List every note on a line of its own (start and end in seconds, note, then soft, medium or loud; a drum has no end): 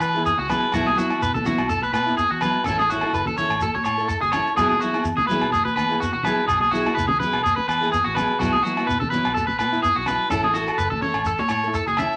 0.00 0.30 E3 loud
0.00 0.24 B4 medium
0.00 low agogo medium
0.00 shekere medium
0.15 0.29 B3 soft
0.15 0.29 E4 medium
0.15 0.28 G#4 medium
0.15 shekere soft
0.26 0.38 G#4 medium
0.26 shekere loud
0.38 0.57 C#2 medium
0.38 0.49 F#4 medium
0.48 0.64 F#3 medium
0.48 0.64 B3 medium
0.48 0.65 E4 medium
0.48 0.66 G#4 medium
0.48 0.72 B4 medium
0.48 low conga medium
0.48 low agogo medium
0.48 shekere medium
0.72 0.92 B1 loud
0.72 0.88 F#3 medium
0.72 0.89 B3 medium
0.72 0.89 E4 loud
0.72 0.86 F#4 medium
0.72 low agogo medium
0.72 shekere loud
0.86 0.97 G#4 medium
0.86 high conga medium
0.86 shekere soft
0.95 1.09 F#3 medium
0.95 1.10 B3 medium
0.95 1.08 E4 medium
0.95 1.20 F#4 medium
0.95 shekere medium
1.09 1.23 E4 medium
1.09 low agogo medium
1.09 shekere soft
1.22 1.51 B2 medium
1.22 1.34 B4 medium
1.22 shekere loud
1.34 1.45 A4 medium
1.34 high conga medium
1.34 low conga medium
1.34 shekere soft
1.44 1.60 F#3 medium
1.44 1.60 B3 medium
1.44 1.61 E4 medium
1.44 1.68 F#4 medium
1.44 low conga medium
1.44 shekere medium
1.58 1.94 B1 medium
1.58 low agogo medium
1.69 1.82 A4 medium
1.69 high conga medium
1.69 shekere loud
1.82 1.92 B4 medium
1.82 high conga medium
1.82 shekere soft
1.93 2.12 B2 loud
1.93 2.16 B4 medium
1.93 low agogo medium
1.93 shekere medium
2.06 2.21 B3 medium
2.06 2.20 E4 medium
2.06 shekere soft
2.17 2.29 G#4 medium
2.17 shekere medium
2.31 2.50 E2 medium
2.31 2.41 F#4 medium
2.41 2.57 F#3 medium
2.41 2.57 B3 medium
2.41 2.64 B4 medium
2.41 low conga medium
2.41 low agogo medium
2.41 shekere medium
2.46 2.58 E4 medium
2.64 3.02 A1 loud
2.64 2.80 C#4 medium
2.64 2.81 E4 medium
2.64 2.78 A4 medium
2.64 low agogo medium
2.64 shekere loud
2.68 2.82 A4 medium
2.79 2.89 G#4 medium
2.79 high conga medium
2.79 shekere soft
2.90 3.03 C#4 medium
2.90 3.03 E4 medium
2.90 3.12 F#4 medium
2.90 shekere medium
2.94 3.02 A4 medium
3.01 3.16 A4 medium
3.01 low agogo medium
3.06 3.18 E4 soft
3.13 3.32 F#1 loud
3.13 3.26 B4 medium
3.13 shekere medium
3.26 3.37 A4 medium
3.26 high conga medium
3.26 low conga medium
3.26 shekere soft
3.37 3.52 C#4 medium
3.37 3.53 E4 medium
3.37 3.54 A4 medium
3.37 3.60 C#5 medium
3.37 low conga medium
3.37 shekere medium
3.49 3.68 A1 loud
3.49 low agogo medium
3.49 shekere soft
3.60 3.74 A4 medium
3.60 high conga medium
3.60 shekere medium
3.75 3.83 C#5 medium
3.75 high conga medium
3.84 4.14 A2 loud
3.84 4.07 C#5 medium
3.84 low agogo medium
3.84 shekere medium
3.98 4.13 E4 soft
3.98 4.11 A4 medium
3.98 shekere soft
4.08 4.21 A4 medium
4.08 shekere loud
4.21 4.41 F#1 medium
4.21 4.32 G#4 medium
4.21 high conga medium
4.21 shekere soft
4.32 4.48 C#4 medium
4.32 4.49 E4 medium
4.32 4.55 C#5 medium
4.32 low conga medium
4.32 low agogo medium
4.32 shekere medium
4.36 4.49 A4 medium
4.46 shekere soft
4.57 4.76 E1 loud
4.57 4.72 F#3 medium
4.57 4.72 B3 medium
4.57 4.72 E4 medium
4.57 4.68 G#4 medium
4.57 4.73 G#4 loud
4.57 low agogo medium
4.57 shekere loud
4.69 4.80 G#4 medium
4.69 high conga medium
4.69 shekere soft
4.80 4.93 F#3 medium
4.80 4.94 B3 medium
4.80 4.93 E4 medium
4.80 5.03 F#4 medium
4.80 shekere medium
4.93 5.08 B3 soft
4.93 5.07 E4 medium
4.93 5.07 G#4 medium
4.93 low agogo medium
4.93 shekere soft
5.04 5.33 E2 medium
5.04 shekere loud
5.17 5.27 G#4 medium
5.17 high conga medium
5.17 low conga medium
5.17 shekere soft
5.27 5.43 F#3 medium
5.27 5.44 B3 medium
5.27 5.45 E4 medium
5.27 5.50 B4 medium
5.27 shekere medium
5.31 5.45 G#4 medium
5.42 5.78 E1 medium
5.42 low agogo medium
5.52 5.64 G#4 medium
5.52 high conga medium
5.52 shekere loud
5.65 5.75 B4 medium
5.65 high conga medium
5.65 shekere soft
5.76 5.95 E2 loud
5.76 5.99 B4 medium
5.76 low agogo medium
5.76 shekere medium
5.89 6.04 E4 medium
5.89 6.03 G#4 medium
5.89 shekere soft
5.93 6.05 B3 medium
6.00 6.12 F#4 medium
6.00 shekere loud
6.13 6.32 E1 medium
6.13 6.23 F#4 medium
6.23 6.39 F#3 medium
6.23 6.40 B3 medium
6.23 6.40 E4 medium
6.23 6.40 G#4 medium
6.23 6.47 B4 medium
6.23 low conga medium
6.23 low agogo medium
6.23 shekere medium
6.47 6.85 B1 loud
6.47 6.60 G#4 medium
6.47 low agogo medium
6.47 shekere loud
6.60 6.71 G#4 medium
6.60 high conga medium
6.60 shekere soft
6.71 6.85 F#3 medium
6.71 6.85 B3 medium
6.71 6.85 E4 medium
6.71 6.94 F#4 medium
6.71 6.86 G#4 medium
6.71 shekere medium
6.86 7.00 B3 soft
6.86 6.99 E4 medium
6.86 low agogo medium
6.86 shekere soft
6.95 7.15 C#2 loud
6.95 7.07 B4 medium
6.95 shekere loud
7.08 7.19 G#4 medium
7.08 high conga medium
7.08 low conga medium
7.08 shekere soft
7.20 7.35 F#3 medium
7.20 7.36 B3 medium
7.20 7.36 E4 medium
7.20 7.37 G#4 medium
7.20 7.42 B4 medium
7.20 low conga medium
7.20 shekere medium
7.33 7.52 E1 loud
7.33 low agogo medium
7.44 7.56 G#4 medium
7.44 high conga medium
7.44 shekere loud
7.56 7.67 B4 medium
7.56 high conga medium
7.68 7.97 E2 loud
7.68 7.90 B4 medium
7.68 low agogo medium
7.68 shekere medium
7.81 7.96 B3 medium
7.81 7.95 E4 medium
7.81 7.94 G#4 medium
7.81 shekere soft
7.92 8.04 G#4 medium
7.92 shekere loud
8.04 8.24 A1 medium
8.04 8.15 F#4 medium
8.15 8.31 F#3 medium
8.15 8.31 B3 medium
8.15 8.32 E4 medium
8.15 8.38 B4 medium
8.15 low conga medium
8.15 low agogo medium
8.15 shekere medium
8.19 8.32 G#4 medium
8.39 8.58 B1 loud
8.39 8.55 F#3 medium
8.39 8.55 B3 medium
8.39 8.56 E4 medium
8.39 8.51 F#4 medium
8.39 low agogo medium
8.39 shekere loud
8.52 8.63 G#4 medium
8.52 high conga medium
8.52 shekere soft
8.63 8.76 F#3 medium
8.63 8.77 B3 medium
8.63 8.76 E4 medium
8.63 8.86 F#4 medium
8.63 shekere medium
8.77 8.92 B3 medium
8.77 8.90 E4 medium
8.77 low agogo medium
8.77 shekere soft
8.87 9.17 B2 loud
8.87 8.99 B4 medium
8.87 shekere medium
9.00 9.10 A4 medium
9.00 high conga medium
9.00 low conga medium
9.00 shekere soft
9.10 9.26 F#3 medium
9.10 9.27 B3 medium
9.10 9.28 E4 medium
9.10 9.33 B4 medium
9.10 low conga medium
9.10 shekere medium
9.25 9.61 B1 medium
9.25 low agogo medium
9.34 9.46 A4 medium
9.34 high conga medium
9.34 shekere medium
9.47 9.57 B4 medium
9.47 high conga medium
9.47 shekere soft
9.59 9.78 B2 loud
9.59 9.82 B4 medium
9.59 low agogo medium
9.59 shekere medium
9.72 9.87 B3 soft
9.72 9.86 E4 medium
9.72 shekere soft
9.83 9.95 G#4 medium
9.83 shekere loud
9.96 10.15 B1 loud
9.96 10.06 F#4 medium
10.06 10.22 F#3 medium
10.06 10.23 E4 medium
10.06 10.30 B4 medium
10.06 muted steel-string acoustic guitar stroke medium
10.06 low conga medium
10.06 low agogo medium
10.06 shekere medium
10.30 10.69 A1 loud
10.30 10.45 C#4 medium
10.30 10.46 E4 loud
10.30 10.43 A4 medium
10.30 10.47 A4 loud
10.30 low agogo medium
10.30 shekere loud
10.44 10.54 G#4 medium
10.44 high conga medium
10.54 10.67 E4 medium
10.54 10.77 F#4 medium
10.54 10.66 A4 medium
10.54 shekere medium
10.67 10.81 A4 medium
10.67 low agogo medium
10.67 shekere soft
10.78 10.97 F#1 loud
10.78 10.90 B4 medium
10.78 shekere loud
10.90 11.02 A4 medium
10.90 high conga medium
10.90 low conga medium
11.02 11.17 C#4 medium
11.02 11.18 E4 medium
11.02 11.19 A4 medium
11.02 11.25 C#5 medium
11.02 low conga medium
11.14 11.33 A1 loud
11.14 low agogo medium
11.25 11.39 A4 medium
11.25 shekere loud
11.38 11.50 C#5 medium
11.38 high conga medium
11.38 shekere soft
11.49 11.79 A2 loud
11.49 11.74 C#5 medium
11.49 low agogo medium
11.49 shekere medium
11.62 11.77 A4 medium
11.62 shekere soft
11.67 11.79 E4 soft
11.74 11.87 A4 medium
11.74 shekere loud
11.86 12.06 F#1 medium
11.86 11.98 G#4 medium
11.86 high conga medium
11.86 shekere soft
11.97 12.14 C#4 medium
11.97 12.15 E4 medium
11.97 12.16 E5 medium
11.97 low conga medium
11.97 low agogo medium
11.97 shekere medium
12.02 12.16 A4 medium
12.12 shekere soft